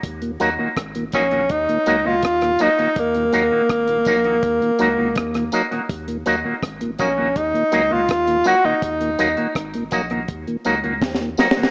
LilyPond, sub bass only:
\new Staff \with { instrumentName = "Sub bass" } { \clef bass \time 4/4 \key ees \minor \tempo 4 = 82 ees,8 ees,16 r16 aes,,8 bes,,8 ees,16 r16 des,16 des,16 ees,8 r8 | ees,8 ees,16 r16 aes,,8 bes,,8 ees,16 r16 des,16 des,16 ees,8 r8 | ees,8 ees,16 r16 aes,,8 bes,,8 ees,16 r16 des,16 des,16 ees,8 r8 | ees,8 ees,16 r16 aes,,8 bes,,8 ees,16 r16 des,16 des,16 ees,8 r8 | }